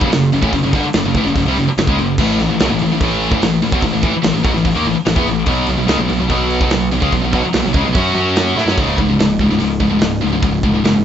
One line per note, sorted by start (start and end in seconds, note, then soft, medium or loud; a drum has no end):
0.01 0.11 F#1 loud
0.01 0.10 F#2 medium
0.01 0.10 C#3 loud
0.01 kick loud
0.11 0.31 F#1 medium
0.11 0.28 F#2 medium
0.11 0.28 C#3 medium
0.11 snare loud
0.11 open hi-hat medium
0.32 0.42 F#1 medium
0.32 0.41 F#2 medium
0.32 0.42 C#3 medium
0.32 open hi-hat medium
0.42 0.52 A1 medium
0.42 0.52 A2 medium
0.42 0.52 E3 loud
0.42 kick loud
0.52 0.62 F#1 medium
0.52 0.63 F#2 medium
0.52 0.64 C#3 medium
0.52 kick medium
0.52 open hi-hat medium
0.63 0.73 F#1 medium
0.63 0.74 F#2 medium
0.63 0.75 C#3 medium
0.73 0.83 G1 loud
0.73 0.84 G2 medium
0.73 0.84 D3 loud
0.73 kick loud
0.73 snare soft
0.73 open hi-hat medium
0.84 muted picked electric bass stroke soft
0.84 muted distorted electric guitar stroke medium
0.93 1.04 F#1 medium
0.93 1.04 F#2 medium
0.93 1.04 C#3 medium
0.93 snare loud
0.93 open hi-hat medium
1.04 1.14 F#1 medium
1.04 1.15 F#2 medium
1.04 1.16 C#3 medium
1.15 1.24 A1 loud
1.15 1.25 A2 medium
1.15 1.25 E3 loud
1.15 kick loud
1.15 open hi-hat medium
1.25 1.35 F#1 medium
1.25 1.35 F#2 medium
1.25 1.35 C#3 medium
1.25 snare soft
1.36 1.45 F#1 medium
1.36 1.46 F#2 medium
1.36 1.46 C#3 medium
1.36 kick medium
1.36 open hi-hat medium
1.45 1.55 C2 medium
1.45 1.56 C3 medium
1.45 1.57 G3 loud
1.56 1.66 F#1 medium
1.56 1.67 F#2 medium
1.56 1.67 C#3 medium
1.56 open hi-hat medium
1.67 muted picked electric bass stroke soft
1.67 muted distorted electric guitar stroke medium
1.77 1.87 F#1 medium
1.77 1.88 F#2 medium
1.77 1.88 C#3 medium
1.77 snare loud
1.77 open hi-hat medium
1.87 1.97 C#2 loud
1.87 1.98 C#3 medium
1.87 1.98 G#3 loud
1.87 kick loud
1.98 2.17 F#1 medium
1.98 2.15 F#2 medium
1.98 2.15 C#3 medium
1.98 open hi-hat medium
2.18 2.38 A1 loud
2.18 2.39 A2 medium
2.18 2.39 E3 loud
2.18 2.39 A3 loud
2.18 kick loud
2.18 crash loud
2.39 2.49 A1 medium
2.39 2.50 A2 medium
2.39 2.50 E3 medium
2.39 snare soft
2.39 open hi-hat medium
2.50 2.59 A1 medium
2.50 2.60 A2 medium
2.50 2.61 E3 medium
2.60 2.70 B1 medium
2.60 2.70 B2 medium
2.60 2.70 F#3 loud
2.60 snare loud
2.60 open hi-hat medium
2.70 2.80 A1 medium
2.70 2.81 A2 medium
2.70 2.81 E3 medium
2.79 2.90 A1 medium
2.79 2.91 A2 medium
2.79 2.91 E3 medium
2.79 open hi-hat medium
2.91 3.01 A1 medium
2.91 3.01 A2 medium
2.91 3.02 E3 medium
3.01 3.30 A1 medium
3.01 3.30 A2 medium
3.01 3.32 E3 medium
3.01 3.32 A3 loud
3.01 kick loud
3.01 open hi-hat medium
3.21 open hi-hat medium
3.31 3.41 A1 medium
3.31 3.41 A2 medium
3.31 3.42 E3 loud
3.31 kick loud
3.42 3.61 A1 medium
3.42 3.59 A2 medium
3.42 3.59 E3 medium
3.42 snare loud
3.42 open hi-hat medium
3.62 3.72 A1 medium
3.62 3.72 A2 medium
3.62 3.72 E3 medium
3.62 open hi-hat medium
3.72 3.82 B1 medium
3.72 3.83 B2 medium
3.72 3.83 F#3 loud
3.72 kick loud
3.81 3.92 A1 medium
3.81 3.92 A2 medium
3.81 3.91 E3 medium
3.81 kick loud
3.81 open hi-hat medium
3.93 4.02 A1 medium
3.93 4.03 A2 medium
3.93 4.04 E3 medium
4.03 4.13 A1 loud
4.03 4.13 A2 medium
4.03 4.14 E3 loud
4.03 kick loud
4.03 open hi-hat medium
4.14 muted distorted electric guitar stroke medium
4.14 muted picked electric bass stroke soft
4.23 4.34 A1 medium
4.23 4.32 A2 medium
4.23 4.32 E3 medium
4.23 snare loud
4.23 open hi-hat medium
4.33 4.44 A1 medium
4.33 4.43 A2 medium
4.33 4.44 E3 medium
4.43 4.54 B1 loud
4.43 4.54 B2 loud
4.43 4.54 F#3 loud
4.43 kick loud
4.43 open hi-hat medium
4.54 4.64 A1 medium
4.54 4.63 A2 medium
4.54 4.64 E3 medium
4.54 snare soft
4.64 4.75 A1 medium
4.64 4.76 A2 medium
4.64 4.74 E3 medium
4.64 kick medium
4.64 open hi-hat medium
4.74 4.85 D#2 medium
4.74 4.85 D#3 medium
4.74 4.85 A#3 loud
4.85 4.96 A1 medium
4.85 4.94 A2 medium
4.85 4.97 E3 medium
4.85 open hi-hat medium
4.95 muted distorted electric guitar stroke medium
4.95 muted picked electric bass stroke soft
5.05 5.16 A1 medium
5.05 5.17 A2 medium
5.05 5.14 E3 medium
5.05 snare loud
5.05 open hi-hat medium
5.16 5.26 E2 loud
5.16 5.24 E3 medium
5.16 5.27 B3 loud
5.16 kick loud
5.25 5.46 A1 medium
5.25 5.43 A2 medium
5.25 5.43 E3 medium
5.25 open hi-hat medium
5.46 5.67 B1 medium
5.46 5.66 B2 medium
5.46 5.67 F#3 loud
5.46 5.68 B3 loud
5.46 kick loud
5.46 open hi-hat medium
5.67 5.77 B1 medium
5.67 5.76 B2 medium
5.67 5.76 F#3 medium
5.67 open hi-hat medium
5.77 5.88 B1 medium
5.77 5.89 B2 medium
5.77 5.87 F#3 medium
5.87 5.98 C#2 loud
5.87 5.98 C#3 loud
5.87 5.98 G#3 loud
5.87 snare loud
5.87 open hi-hat medium
5.99 6.09 B1 medium
5.99 6.08 B2 medium
5.99 6.08 F#3 medium
6.09 6.20 B1 medium
6.09 6.19 B2 medium
6.09 6.19 F#3 medium
6.09 open hi-hat medium
6.20 6.29 B1 medium
6.20 6.27 B2 medium
6.20 6.29 F#3 medium
6.29 6.59 B1 medium
6.29 6.60 B2 medium
6.29 6.61 F#3 loud
6.29 6.61 B3 loud
6.29 kick loud
6.29 open hi-hat medium
6.51 open hi-hat medium
6.61 6.71 B1 medium
6.61 6.71 B2 loud
6.61 6.71 F#3 loud
6.61 kick loud
6.70 6.91 B1 medium
6.70 6.89 B2 medium
6.70 6.89 F#3 medium
6.70 snare loud
6.70 open hi-hat medium
6.92 7.01 B1 medium
6.92 7.03 B2 medium
6.92 7.02 F#3 medium
6.92 open hi-hat medium
7.02 7.12 C#2 medium
7.02 7.12 C#3 medium
7.02 7.13 G#3 medium
7.02 kick medium
7.12 7.22 B1 medium
7.12 7.23 B2 medium
7.12 7.23 F#3 medium
7.12 kick medium
7.12 open hi-hat medium
7.24 7.33 B1 medium
7.24 7.32 B2 medium
7.24 7.33 F#3 medium
7.33 7.43 B1 loud
7.33 7.43 B2 medium
7.33 7.44 F#3 loud
7.33 kick loud
7.33 open hi-hat medium
7.45 muted picked electric bass stroke soft
7.45 muted distorted electric guitar stroke medium
7.53 7.64 B1 medium
7.53 7.66 B2 medium
7.53 7.66 F#3 medium
7.53 snare loud
7.53 open hi-hat medium
7.62 7.73 B1 medium
7.62 7.74 B2 medium
7.62 7.73 F#3 medium
7.67 7.76 B2 medium
7.67 7.76 F#3 medium
7.74 7.84 C#2 loud
7.74 7.85 C#3 medium
7.74 7.86 G#3 loud
7.74 kick loud
7.74 open hi-hat medium
7.84 7.94 B1 medium
7.84 7.95 B2 medium
7.84 7.96 F#3 medium
7.88 7.97 B2 medium
7.93 8.14 F#2 medium
7.93 8.12 F#3 loud
7.93 8.14 F#4 loud
7.93 kick loud
7.93 open hi-hat medium
7.98 8.17 F#3 medium
7.98 8.17 C#4 loud
7.98 8.18 F#4 loud
8.14 8.54 F#2 medium
8.14 8.56 F#3 medium
8.14 8.56 C#4 medium
8.14 8.56 F#4 medium
8.14 open hi-hat medium
8.19 8.58 F#3 medium
8.19 8.59 C#4 loud
8.19 8.59 F#4 loud
8.36 snare loud
8.36 open hi-hat medium
8.56 8.65 A2 medium
8.56 8.68 A3 medium
8.56 8.69 E4 loud
8.56 snare medium
8.66 8.76 F#2 loud
8.66 snare medium
8.70 8.79 F#3 medium
8.70 8.79 C#4 medium
8.78 9.17 C#1 medium
8.78 8.98 C#2 medium
8.78 8.99 G#2 loud
8.78 8.99 C#3 loud
8.78 kick loud
8.78 open hi-hat medium
8.98 9.08 C#2 medium
8.98 9.08 G#2 medium
8.98 kick medium
9.10 9.19 C#2 medium
9.10 9.19 G#2 medium
9.18 9.58 C#1 medium
9.18 9.38 C#2 medium
9.18 9.38 G#2 medium
9.18 snare loud
9.18 open hi-hat medium
9.39 9.49 C#2 medium
9.39 9.49 G#2 medium
9.39 kick medium
9.50 9.59 C#2 medium
9.50 9.59 G#2 medium
9.50 snare soft
9.60 9.80 C#1 medium
9.60 9.79 C#2 medium
9.60 9.79 G#2 medium
9.60 open hi-hat medium
9.80 10.00 C#1 medium
9.80 9.89 C#2 medium
9.80 9.89 G#2 medium
9.80 kick medium
9.91 10.01 C#2 medium
9.91 10.01 G#2 medium
10.01 10.21 C#1 medium
10.01 10.21 C#2 medium
10.01 10.21 G#2 medium
10.01 snare loud
10.01 open hi-hat medium
10.22 10.42 C#1 medium
10.22 10.32 C#2 medium
10.22 10.32 G#2 medium
10.33 10.41 C#2 medium
10.33 10.41 G#2 medium
10.42 10.63 C#1 medium
10.42 10.61 C#2 medium
10.42 10.61 G#2 medium
10.42 kick loud
10.42 open hi-hat medium
10.63 10.83 C#1 loud
10.63 10.73 C#2 medium
10.63 10.72 G#2 medium
10.63 kick medium
10.74 10.83 C#2 medium
10.74 10.83 G#2 medium
10.84 11.05 F#1 medium
10.84 11.03 C#2 medium
10.84 11.03 G#2 medium
10.84 snare loud
10.84 open hi-hat medium